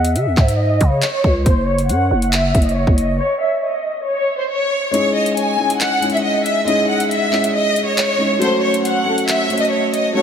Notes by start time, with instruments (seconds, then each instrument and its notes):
Already playing: 808-style bass E2, violin section F#5
0.05 closed hi-hat
0.15 808-style bass C#3, violin section E5, closed hi-hat
0.26 808-style bass E2
0.37 808-style bass G#2, kick, clap
0.48 closed hi-hat
0.59 violin section D#5
0.81 808-style bass C#3, kick, closed hi-hat
0.92 violin section C#5
1.02 clap, closed hi-hat
1.24 808-style bass C#2, kick
1.45 808-style bass F#1, violin section C5, kick, closed hi-hat
1.68 violin section C#5
1.78 closed hi-hat
1.89 808-style bass F#2, violin section F#5, closed hi-hat
2.11 808-style bass F#1
2.22 closed hi-hat
2.33 violin section E5, clap, closed hi-hat
2.55 808-style bass F#1, kick, closed hi-hat
2.62 violin section D#5, closed hi-hat
2.69 closed hi-hat
2.76 violin section C#5
2.87 808-style bass F#1, kick
2.98 violin section D#5, closed hi-hat
3.20 violin section C#5
3.42 violin section E5
3.64 violin section D#5
4.06 violin section C#5
4.40 violin section C5
4.51 violin section C#5
4.91 grand piano G#3 C#4 D#4 E4, violin section C#5, closed hi-hat
4.96 grand piano G#4
5.16 violin section D#5
5.26 closed hi-hat
5.37 violin section G#5, closed hi-hat
5.56 grand piano G#3 C#4 D#4 E4
5.62 grand piano G#4
5.70 closed hi-hat
5.81 violin section F#5, clap, closed hi-hat
6.00 grand piano G#3 C#4 D#4 E4, closed hi-hat
6.05 grand piano G#4
6.10 violin section E5, closed hi-hat
6.17 closed hi-hat
6.24 violin section D#5
6.46 violin section E5, closed hi-hat
6.65 grand piano G#3 C#4 D#4 E4, violin section D#5, closed hi-hat
6.70 grand piano G#4
6.90 violin section F#5
7.00 closed hi-hat
7.11 violin section E5, closed hi-hat
7.30 grand piano G#3 C#4 D#4 E4, clap
7.36 grand piano G#4
7.44 closed hi-hat
7.55 violin section D#5
7.76 closed hi-hat
7.87 violin section C#5
7.98 clap, closed hi-hat
8.17 grand piano G#3 C#4 D#4 E4
8.22 grand piano G#4
8.39 grand piano F#3 A3 C#4 F#4, violin section C5, closed hi-hat
8.44 grand piano A4
8.63 violin section C#5
8.74 closed hi-hat
8.85 violin section F#5, closed hi-hat
9.04 grand piano F#3 A3 C#4 F#4
9.09 grand piano A4
9.18 closed hi-hat
9.28 violin section E5, clap, closed hi-hat
9.48 grand piano F#3 A3 C#4 F#4, closed hi-hat
9.53 grand piano C5
9.58 violin section D#5, closed hi-hat
9.65 closed hi-hat
9.72 violin section C#5
9.94 violin section D#5, closed hi-hat
10.13 grand piano F#3 A3 C#4 F#4, violin section C#5
10.18 grand piano A4